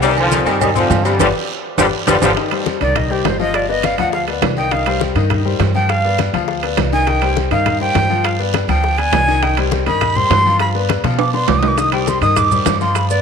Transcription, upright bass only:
0.00 0.40 C2 medium
0.46 0.87 G2 medium
0.90 1.17 G2 loud
1.19 1.30 G1 medium
1.78 1.89 G1 loud
2.07 2.18 G1 loud
2.22 2.33 G1 loud
2.81 3.22 C2 medium
3.25 3.93 G1 medium
3.98 4.39 D2 medium
4.42 5.10 C2 loud
5.15 5.57 G2 loud
5.59 6.28 G2 loud
6.33 6.75 D2 medium
6.78 7.46 C2 medium
7.51 7.92 G2 medium
7.95 8.63 G2 loud
8.68 9.10 D2 medium
9.12 9.81 C2 medium
9.86 10.27 G2 medium
10.30 10.98 G2 loud
11.04 11.45 B2 medium
11.48 12.16 C2 medium
12.21 12.63 G2 medium
12.65 13.22 G2 loud

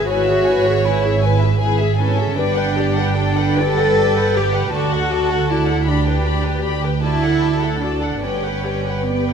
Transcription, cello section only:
0.08 0.83 F#4 medium
0.85 1.23 E4 medium
1.99 2.34 C#4 medium
2.37 3.57 D4 medium
3.57 4.35 A4 medium
4.35 4.73 G4 medium
4.72 5.47 F#4 medium
5.49 5.87 E4 medium
5.86 6.63 D4 medium
7.03 7.77 E4 medium
7.81 8.21 D4 medium
8.22 9.06 C#4 medium
9.06 9.33 B3 medium

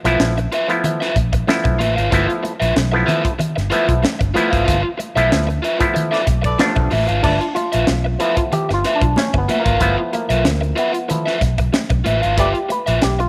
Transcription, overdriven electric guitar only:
0.05 0.19 F4 medium
0.05 0.18 B4 medium
0.05 0.18 E5 medium
0.38 muted overdriven electric guitar stroke soft
0.52 0.70 F4 medium
0.52 0.69 B4 medium
0.52 0.68 E5 loud
0.69 muted overdriven electric guitar stroke soft
0.84 muted overdriven electric guitar stroke soft
1.00 1.15 F4 medium
1.00 1.15 B4 medium
1.00 1.16 E5 medium
1.16 muted overdriven electric guitar stroke soft
1.33 muted overdriven electric guitar stroke soft
1.48 muted overdriven electric guitar stroke soft
1.64 muted overdriven electric guitar stroke soft
1.79 1.94 F4 medium
1.79 1.95 B4 medium
1.79 1.95 E5 medium
1.96 2.10 F4 medium
1.96 2.10 B4 medium
1.96 2.09 F5 medium
2.11 2.30 F4 medium
2.11 2.27 B4 medium
2.11 2.26 E5 loud
2.27 muted overdriven electric guitar stroke soft
2.43 muted overdriven electric guitar stroke soft
2.60 2.74 F4 soft
2.60 2.73 B4 medium
2.60 2.73 E5 medium
2.92 muted overdriven electric guitar stroke medium
3.06 3.25 F4 medium
3.06 3.24 B4 loud
3.06 3.23 E5 medium
3.24 muted overdriven electric guitar stroke soft
3.39 muted overdriven electric guitar stroke soft
3.56 muted overdriven electric guitar stroke medium
3.70 3.89 F4 medium
3.70 3.88 B4 medium
3.70 3.87 E5 medium
3.88 muted overdriven electric guitar stroke soft
4.03 muted overdriven electric guitar stroke soft
4.19 muted overdriven electric guitar stroke soft
4.34 4.50 F4 medium
4.34 4.50 B4 medium
4.34 4.50 E5 medium
4.50 4.64 F4 medium
4.50 4.65 B4 soft
4.50 4.65 F5 medium
4.65 4.85 F4 medium
4.65 4.83 B4 medium
4.65 4.83 F5 medium
4.83 muted overdriven electric guitar stroke medium
4.98 muted overdriven electric guitar stroke soft
5.16 5.30 F4 soft
5.16 5.30 B4 medium
5.16 5.29 E5 medium
5.47 muted overdriven electric guitar stroke medium
5.62 5.82 F4 medium
5.62 5.80 B4 medium
5.62 5.78 E5 medium
5.79 muted overdriven electric guitar stroke soft
5.94 muted overdriven electric guitar stroke soft
6.11 6.25 F4 medium
6.11 6.25 B4 medium
6.11 6.26 E5 medium
6.26 muted overdriven electric guitar stroke soft
6.42 muted overdriven electric guitar stroke soft
6.59 muted overdriven electric guitar stroke soft
6.76 muted overdriven electric guitar stroke soft
6.91 7.06 F4 medium
6.91 7.07 B4 medium
6.91 7.07 E5 medium
7.08 7.21 F4 medium
7.08 7.22 B4 medium
7.08 7.21 F5 medium
7.22 7.42 F4 medium
7.22 7.41 B4 medium
7.22 7.39 E5 medium
7.40 muted overdriven electric guitar stroke soft
7.55 muted overdriven electric guitar stroke soft
7.72 7.87 F4 medium
7.72 7.87 B4 medium
7.72 7.86 E5 medium
8.05 muted overdriven electric guitar stroke medium
8.20 8.39 F4 medium
8.20 8.37 B4 loud
8.20 8.36 E5 loud
8.37 muted overdriven electric guitar stroke soft
8.52 muted overdriven electric guitar stroke soft
8.69 muted overdriven electric guitar stroke soft
8.85 9.03 F4 medium
8.85 9.02 B4 medium
8.85 9.01 E5 medium
9.02 muted overdriven electric guitar stroke soft
9.17 muted overdriven electric guitar stroke soft
9.34 muted overdriven electric guitar stroke medium
9.49 9.63 F4 medium
9.49 9.64 B4 medium
9.49 9.63 E5 medium
9.64 9.79 F4 soft
9.64 9.79 B4 medium
9.64 9.78 F5 medium
9.80 9.99 F4 medium
9.80 9.98 B4 medium
9.80 9.97 F5 medium
9.98 muted overdriven electric guitar stroke soft
10.13 muted overdriven electric guitar stroke soft
10.29 10.44 F4 soft
10.29 10.43 B4 medium
10.29 10.43 E5 medium
10.61 muted overdriven electric guitar stroke soft
10.76 10.95 F4 medium
10.76 10.93 B4 loud
10.76 10.92 E5 loud
10.93 muted overdriven electric guitar stroke medium
11.09 muted overdriven electric guitar stroke soft
11.26 11.39 F4 medium
11.26 11.41 B4 medium
11.26 11.41 E5 medium
11.41 muted overdriven electric guitar stroke soft
11.58 muted overdriven electric guitar stroke soft
11.73 muted overdriven electric guitar stroke soft
11.90 muted overdriven electric guitar stroke soft
12.04 12.20 F4 medium
12.04 12.21 B4 medium
12.04 12.21 E5 medium
12.22 12.36 F4 medium
12.22 12.36 B4 medium
12.22 12.35 F5 medium
12.37 12.56 F4 medium
12.37 12.54 B4 medium
12.37 12.52 E5 medium
12.53 muted overdriven electric guitar stroke soft
12.69 muted overdriven electric guitar stroke soft
12.86 13.01 F4 soft
12.86 13.00 B4 medium
12.86 13.00 E5 medium
13.19 muted overdriven electric guitar stroke soft

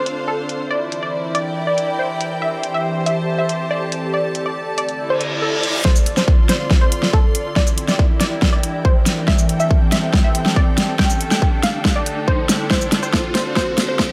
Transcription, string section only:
0.00 1.39 D4 medium
0.00 1.39 C5 medium
0.00 0.71 F5 medium
0.71 3.11 E4 medium
0.78 3.11 D5 medium
1.40 3.11 G5 medium
2.42 5.33 G4 medium
2.49 4.48 C5 medium
3.10 6.45 A5 medium
4.32 9.96 D5 medium
4.99 5.85 E4 medium
5.85 7.56 F4 medium
6.18 8.25 C6 medium
7.56 9.80 E4 medium
7.85 13.39 G5 medium
9.28 11.68 C4 medium
9.46 13.39 A4 medium
10.99 14.12 D4 medium
12.81 14.12 C5 medium
13.44 14.12 F5 medium

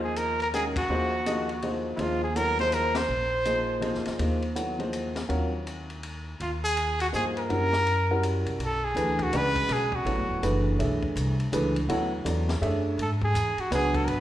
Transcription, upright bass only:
0.00 0.85 D#2 medium
0.88 1.95 D#2 medium
1.97 3.04 D#2 medium
3.08 3.90 A#1 medium
3.95 4.06 D#2 medium
4.07 4.18 D2 medium
4.19 5.25 D#2 medium
5.29 6.35 D#2 medium
6.40 7.09 D#2 medium
7.13 7.47 G2 medium
7.50 8.43 F#2 medium
8.46 8.58 C#2 medium
8.59 8.94 B1 medium
8.95 9.31 D2 medium
9.32 9.68 C#2 medium
9.68 10.04 B1 medium
10.05 10.19 A1 medium
10.17 10.29 F#1 medium
10.29 10.41 D1 medium
10.43 10.78 F#1 medium
10.79 11.01 B1 medium
11.02 muted upright bass stroke soft
11.16 11.51 C2 loud
11.52 11.88 C#2 medium
11.89 12.24 D2 medium
12.25 12.60 E2 medium
12.61 12.97 F#2 medium
12.98 13.34 G#2 medium
13.34 13.56 E2 medium
13.57 muted upright bass stroke soft
13.71 14.07 C#2 medium
14.07 14.20 G#1 medium

